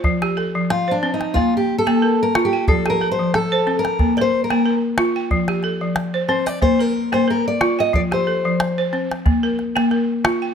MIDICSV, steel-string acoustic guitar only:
0, 0, Header, 1, 2, 480
1, 0, Start_track
1, 0, Key_signature, -1, "major"
1, 0, Tempo, 658617
1, 32, Time_signature, 4, 2, 24, 8
1, 7682, End_track
2, 0, Start_track
2, 0, Title_t, "Steel-string acoustic guitar"
2, 0, Program_c, 0, 25
2, 512, Note_on_c, 0, 65, 83
2, 665, Note_on_c, 0, 62, 79
2, 677, Note_off_c, 0, 65, 0
2, 818, Note_off_c, 0, 62, 0
2, 828, Note_on_c, 0, 63, 68
2, 976, Note_on_c, 0, 65, 91
2, 996, Note_off_c, 0, 63, 0
2, 1140, Note_off_c, 0, 65, 0
2, 1143, Note_on_c, 0, 67, 76
2, 1298, Note_off_c, 0, 67, 0
2, 1300, Note_on_c, 0, 69, 96
2, 1619, Note_off_c, 0, 69, 0
2, 1622, Note_on_c, 0, 70, 95
2, 1776, Note_off_c, 0, 70, 0
2, 1784, Note_on_c, 0, 67, 87
2, 1937, Note_off_c, 0, 67, 0
2, 1954, Note_on_c, 0, 69, 91
2, 2109, Note_off_c, 0, 69, 0
2, 2111, Note_on_c, 0, 70, 92
2, 2267, Note_off_c, 0, 70, 0
2, 2270, Note_on_c, 0, 72, 89
2, 2436, Note_off_c, 0, 72, 0
2, 2440, Note_on_c, 0, 69, 93
2, 2759, Note_off_c, 0, 69, 0
2, 2762, Note_on_c, 0, 70, 86
2, 3034, Note_off_c, 0, 70, 0
2, 3037, Note_on_c, 0, 74, 75
2, 3067, Note_off_c, 0, 74, 0
2, 3070, Note_on_c, 0, 72, 91
2, 3233, Note_off_c, 0, 72, 0
2, 3236, Note_on_c, 0, 70, 86
2, 3457, Note_off_c, 0, 70, 0
2, 4580, Note_on_c, 0, 72, 66
2, 4710, Note_off_c, 0, 72, 0
2, 4710, Note_on_c, 0, 74, 91
2, 4824, Note_off_c, 0, 74, 0
2, 4826, Note_on_c, 0, 72, 92
2, 4958, Note_off_c, 0, 72, 0
2, 4958, Note_on_c, 0, 70, 75
2, 5198, Note_off_c, 0, 70, 0
2, 5202, Note_on_c, 0, 72, 87
2, 5313, Note_off_c, 0, 72, 0
2, 5323, Note_on_c, 0, 70, 85
2, 5437, Note_off_c, 0, 70, 0
2, 5448, Note_on_c, 0, 74, 93
2, 5682, Note_off_c, 0, 74, 0
2, 5685, Note_on_c, 0, 75, 97
2, 5794, Note_off_c, 0, 75, 0
2, 5797, Note_on_c, 0, 74, 99
2, 5833, Note_off_c, 0, 74, 0
2, 5928, Note_on_c, 0, 72, 74
2, 6644, Note_off_c, 0, 72, 0
2, 7682, End_track
0, 0, End_of_file